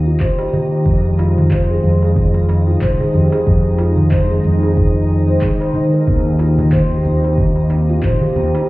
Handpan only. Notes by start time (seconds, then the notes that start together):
0.06 F4
0.21 C5
0.39 G4
0.54 G4
0.72 G4
1.20 F4
1.52 C5
1.70 G#4
2.03 G#4
2.67 F4
2.81 C5
3.00 G#4
3.14 G4
3.33 G#4
3.80 F4
4.12 C5
4.30 G#4
4.63 G#4
5.28 C5
5.42 G#4
5.61 C5
5.75 D#4
5.93 A#4
6.40 F4
6.73 C5
6.91 G4
7.24 G4
7.89 F4
8.04 C5
8.22 G4
8.36 G4
8.55 G4